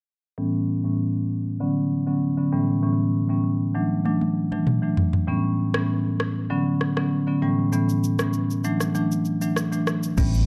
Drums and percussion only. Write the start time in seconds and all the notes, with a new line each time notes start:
4.05 high tom
4.21 high tom
4.52 mid tom
4.67 mid tom
4.97 floor tom
5.13 floor tom
5.74 cross-stick
6.20 cross-stick
6.81 cross-stick
6.97 cross-stick
7.73 shaker
7.89 shaker
8.04 shaker
8.19 cross-stick, shaker
8.33 shaker
8.51 shaker
8.64 shaker
8.80 cross-stick, shaker
8.95 shaker
9.12 shaker
9.25 shaker
9.42 shaker
9.56 cross-stick, shaker
9.73 shaker
9.87 cross-stick, shaker
10.03 shaker
10.18 kick, crash, low conga, shaker
10.34 shaker